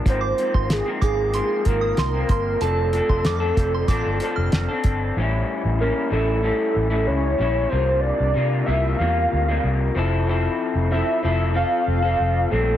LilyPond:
<<
  \new Staff \with { instrumentName = "Synth bell" } { \time 4/4 \key f \major \tempo 4 = 94 r16 d'''16 r16 c'''16 r8 d'''8 c'''16 r8 ees'''16 c'''16 r16 c'''16 r16 | a''16 r8 c'''16 d'''16 r8 c'''16 d'''16 r8 f'''16 r4 | r1 | r1 |
r1 | }
  \new Staff \with { instrumentName = "Soft synth lead" } { \time 4/4 \key f \major c''4 aes'8 aes'4 bes'4 bes'8 | a'2. r4 | r4 bes'8 a'8 a'4 cis''4 | c''8 d''4 e''8 f''4 r4 |
r4 e''8 e''8 f''4. a'8 | }
  \new Staff \with { instrumentName = "Clean electric guitar" } { \time 4/4 \key f \major <aes, f bes c'>8 <aes, f bes c'>8. <aes, f bes c'>8. <aes, f bes c'>8 <aes, f bes c'>8. <f bes c'>8. | <f c' d' a'>8 <f c' d' a'>8. <f c' d' a'>8. <f c' d' a'>8 <f c' d' a'>8. <c' d' a'>8. | <a, g cis' e'>4 <a, g cis' e'>8 <a, g cis' e'>8 <a, g cis' e'>8. <a, g cis' e'>8. <a, g cis' e'>8 | <c g bes f'>4 <c g bes f'>8 <c g bes f'>8 <c g bes f'>8. <c g bes f'>8. <f c' e' a'>8 |
<f c' e' a'>4 <f c' e' a'>8 <f c' e' a'>8 <f c' a'>8. <f c' a'>8. <bes, g c' d'>8 | }
  \new Staff \with { instrumentName = "Fingered electric bass" } { \clef bass \time 4/4 \key f \major aes,,8 r16 aes,,8 r16 aes,,8. r16 aes,,8 c,8 g,,8 | f,,8. f,,16 f,8 f,,8 a,,16 g,,16 r16 f,,16 f,,16 r16 g,,8 | a,,8 r16 a,,8 r16 a,,8. r16 a,,8 cis,8 bes,,8 | c,8. c,16 c8 c,8 e,8 d,8 c,8 f,,8~ |
f,,8 r16 f,,8 r16 f,,8. r16 f,,8 f,,8 bes,,8 | }
  \new DrumStaff \with { instrumentName = "Drums" } \drummode { \time 4/4 <hh bd>8 hh16 bd16 <hh sn>8 <hh bd>8 hh8 <hh bd>8 <hh sn>8 <hh bd>8 | hh8 hh16 bd16 <hh sn>8 <hh bd>8 <hh bd>8 hh8 <hh sn>8 <hh bd>8 | r4 r4 r4 r4 | r4 r4 r4 r4 |
r4 r4 r4 r4 | }
>>